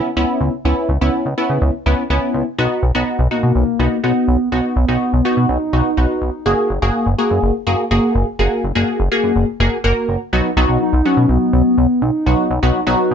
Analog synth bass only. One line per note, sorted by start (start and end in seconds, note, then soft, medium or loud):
0.16 0.25 C#2 loud
0.41 0.50 C#2 loud
0.65 0.74 C#2 loud
0.89 0.98 C#2 loud
1.01 1.10 C#2 loud
1.25 1.34 C#2 loud
1.50 1.59 C#3 medium
1.62 1.71 C#2 loud
1.86 1.95 C#2 loud
2.10 2.19 C#2 loud
2.34 2.43 C#2 loud
2.59 2.67 B1 loud
2.83 2.92 B1 medium
2.95 3.04 B1 loud
3.19 3.28 B1 loud
3.43 3.52 B2 medium
3.55 3.64 B1 loud
3.79 3.88 B1 loud
4.04 4.13 B1 loud
4.28 4.37 B1 loud
4.52 4.61 B1 loud
4.76 4.85 B1 loud
4.88 4.97 B1 loud
5.13 5.22 B1 loud
5.37 5.46 B2 loud
5.49 5.58 B1 loud
5.73 5.82 B1 loud
5.97 6.06 B1 loud
6.22 6.30 B1 loud
6.46 6.55 F#1 loud
6.70 6.79 F#1 loud
6.82 6.91 F#1 medium
7.06 7.15 F#1 loud
7.31 7.39 F#2 loud
7.43 7.51 F#1 medium
7.67 7.76 F#1 loud
7.91 8.00 F#1 loud
8.15 8.24 F#1 loud
8.39 8.48 F#1 loud
8.64 8.72 F#1 loud
8.75 8.84 F#1 medium
9.00 9.09 F#1 loud
9.24 9.33 F#2 medium
9.36 9.45 F#1 loud
9.60 9.69 F#1 loud
9.84 9.93 F#1 loud
10.08 10.17 F#1 loud
10.33 10.42 B1 loud
10.57 10.66 B1 loud
10.69 10.78 B1 medium
10.93 11.02 B1 loud
11.17 11.26 B2 medium
11.29 11.38 B1 loud
11.53 11.62 B1 loud
11.78 11.87 B1 loud
12.02 12.11 B1 medium
12.26 12.35 B1 loud
12.50 12.59 B1 loud
12.63 12.72 B1 loud
12.87 12.96 B1 loud
13.11 13.14 B2 loud